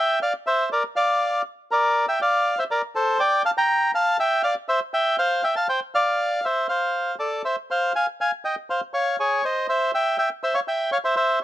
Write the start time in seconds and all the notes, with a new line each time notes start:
Already playing: E5 G5
0.22 D5 F5
0.47 C5 E5
0.72 A#4 D5
0.96 D5 F5
1.71 A#4 D5
2.08 E5 G5
2.22 D5 F5
2.59 C5 E5
2.71 A#4 D5
2.95 A4 C5
3.20 D5 G5
3.45 F5 A5
3.58 G5 A#5
3.95 F5 A5
4.20 E5 G5
4.43 D5 F5
4.68 C5 E5
4.94 E5 G5
5.19 C5 F5
5.44 E5 G5
5.56 F5 A5
5.69 C5 G5
5.95 D5 F5
6.45 C5 E5
6.69 C5 F5
7.19 A4 D5
7.45 C5 E5
7.71 C5 F5
7.96 F5 G#5
8.21 F5 G#5
8.45 D#5 G5
8.70 C5 F5
8.94 C#5 F5
9.20 G#4 C#5
9.45 C5 D#5
9.69 C5 E5
9.94 E5 G5
10.18 E5 G5
10.43 C5 E5
10.55 C#5 F5
10.68 E5 G5
10.92 C#5 F5
11.04 C5 E5
11.16 C5 E5